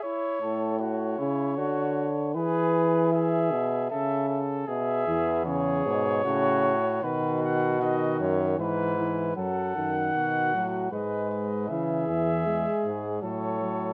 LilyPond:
<<
  \new Staff \with { instrumentName = "Trumpet" } { \time 3/4 \key e \mixolydian \tempo 4 = 77 cis''4 cis''2 | b'4 e''4 e''8 r8 | e''4 cis''2 | b'8 fis''8 dis''8 cis''8 b'4 |
fis''2 dis''8 dis''8 | e''2 cis''4 | }
  \new Staff \with { instrumentName = "Flugelhorn" } { \time 3/4 \key e \mixolydian e'8 a'8 fis'8 e'8 fis'8 r8 | gis'4 gis'4 a'8 a'8 | gis'4 gis'4 fis'4 | fis'2 e'4 |
a'4 fis'4 b'4 | gis'2 a'4 | }
  \new Staff \with { instrumentName = "Euphonium" } { \clef bass \time 3/4 \key e \mixolydian r8 a,4 cis8 d4 | e4. b,8 cis4 | b,8 e8 cis8 b,8 cis8 r8 | dis4 dis4 e8 e8 |
fis8 dis4 fis8 gis4 | e4 gis4 fis8 fis8 | }
  \new Staff \with { instrumentName = "Bass trombone" } { \clef bass \time 3/4 \key e \mixolydian r2. | r2. | r8 e,4 gis,8 a,4 | b,4. fis,8 gis,4 |
fis,8 fis,8 b,8 a,8 gis,4 | cis8 e,4 gis,8 a,4 | }
>>